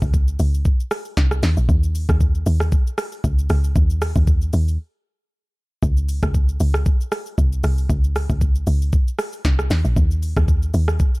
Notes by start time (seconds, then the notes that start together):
0.02 C#2, kick, shaker
0.14 kick, shaker
0.28 shaker
0.39 C#2, open hi-hat, shaker
0.54 shaker
0.65 kick, shaker
0.80 shaker
0.91 cross-stick, open hi-hat, shaker
1.05 shaker
1.17 C2, kick, snare, shaker
1.31 cross-stick, shaker
1.43 D#2, snare, open hi-hat, shaker
1.57 A#1, shaker
1.69 D#2, kick, shaker
1.83 shaker
1.95 open hi-hat, shaker
2.09 D#2, kick, cross-stick, shaker
2.20 kick, shaker
2.35 shaker
2.46 D#2, open hi-hat, shaker
2.60 cross-stick, shaker
2.72 kick, shaker
2.87 shaker
2.98 cross-stick, open hi-hat, shaker
3.12 shaker
3.24 C#2, kick, shaker
3.39 shaker
3.50 C#2, cross-stick, open hi-hat, shaker
3.64 shaker
3.76 D#2, kick, shaker
3.90 shaker
4.02 cross-stick, open hi-hat, shaker
4.16 D#2, kick, shaker
4.27 kick, shaker
4.42 shaker
4.53 D#2, open hi-hat, shaker
4.68 shaker
5.83 C#2, kick, shaker
5.97 shaker
6.09 open hi-hat, shaker
6.23 C#2, kick, cross-stick, shaker
6.34 kick, shaker
6.49 shaker
6.60 C#2, open hi-hat, shaker
6.74 cross-stick, shaker
6.86 kick, shaker
7.01 shaker
7.12 cross-stick, open hi-hat, shaker
7.26 shaker
7.38 C2, kick, shaker
7.53 shaker
7.64 C2, cross-stick, open hi-hat, shaker
7.78 shaker
7.90 C#2, kick, shaker
8.04 shaker
8.16 cross-stick, open hi-hat, shaker
8.30 C#2, kick, shaker
8.41 kick, shaker
8.55 shaker
8.67 C#2, open hi-hat, shaker
8.82 shaker
8.93 kick, shaker
9.08 shaker
9.19 cross-stick, open hi-hat, shaker
9.33 shaker
9.45 C2, kick, snare, shaker
9.59 cross-stick, shaker
9.70 D#2, snare, open hi-hat, shaker
9.85 A#1, shaker
9.96 D#2, kick, shaker
10.11 shaker
10.23 open hi-hat, shaker
10.36 D#2, kick, cross-stick, shaker
10.48 kick, shaker
10.62 shaker
10.74 D#2, open hi-hat, shaker
10.88 cross-stick, shaker
11.00 kick, shaker
11.15 shaker